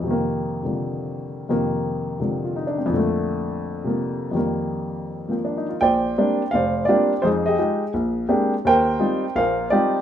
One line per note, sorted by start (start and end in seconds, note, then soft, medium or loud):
0.00 1.47 F2 soft
0.00 0.62 C3 soft
0.07 1.49 D#3 soft
0.07 1.49 A#3 medium
0.63 1.48 C3 soft
0.63 1.50 D3 soft
0.63 1.51 F3 soft
1.49 2.84 F2 soft
1.49 2.18 C3 soft
1.49 2.91 D#3 soft
1.49 2.92 A#3 medium
2.20 2.91 C3 soft
2.20 2.91 D3 soft
2.20 2.92 F3 soft
2.45 2.62 F4 soft
2.56 2.77 D#4 soft
2.67 2.85 D4 soft
2.78 2.97 C4 soft
2.86 4.30 F2 medium
2.86 4.33 A#2 soft
2.93 4.35 D3 soft
2.93 4.36 A3 medium
3.84 4.33 C3 soft
3.84 4.34 F3 soft
3.84 4.35 A#3 soft
4.31 5.79 F2 soft
4.31 5.80 D#3 soft
4.31 5.81 G3 soft
4.36 5.28 A#3 soft
5.29 5.80 F3 soft
5.29 5.81 A#3 soft
5.29 5.34 C4 soft
5.45 5.66 D4 soft
5.57 5.75 D#4 soft
5.69 5.87 F4 soft
5.81 6.12 A#1 medium
5.81 6.50 C5 medium
5.81 6.50 D5 medium
5.81 6.49 G5 medium
6.18 6.41 G3 soft
6.18 6.41 A#3 soft
6.18 6.41 C4 soft
6.18 6.42 D4 medium
6.51 6.84 F1 medium
6.51 6.85 F5 medium
6.55 7.20 C5 medium
6.55 6.84 D5 medium
6.85 7.12 G3 soft
6.85 7.12 A#3 soft
6.85 7.21 F4 soft
6.85 7.21 G4 soft
6.85 7.19 D5 medium
6.89 7.12 C4 soft
6.89 7.12 D4 medium
7.22 7.54 F2 medium
7.22 7.54 F3 medium
7.22 7.57 D#4 soft
7.22 7.47 G#4 medium
7.22 7.27 C5 medium
7.46 7.57 G4 soft
7.46 7.92 G#4 medium
7.46 7.91 D#5 medium
7.58 7.82 G#3 medium
7.58 7.82 D#4 soft
7.58 7.82 F4 soft
7.58 7.82 G4 medium
7.94 8.25 A#1 medium
8.29 8.53 G#3 medium
8.29 8.53 A#3 soft
8.29 8.53 C4 soft
8.29 8.53 D4 soft
8.29 8.53 G4 medium
8.65 8.96 D#2 medium
8.65 9.33 A#4 medium
8.65 9.33 C5 medium
8.65 9.39 G5 loud
8.99 9.24 G3 medium
8.99 9.24 C4 soft
8.99 9.24 D#4 soft
8.99 9.24 F4 medium
9.36 9.67 A#1 medium
9.36 9.67 A#2 medium
9.36 10.02 A#4 medium
9.36 10.02 C5 medium
9.36 9.73 F5 medium
9.70 9.96 G3 medium
9.70 9.96 C4 soft
9.70 9.96 D#4 soft
9.70 10.02 F4 medium
9.70 10.02 G4 medium
9.70 10.02 D5 medium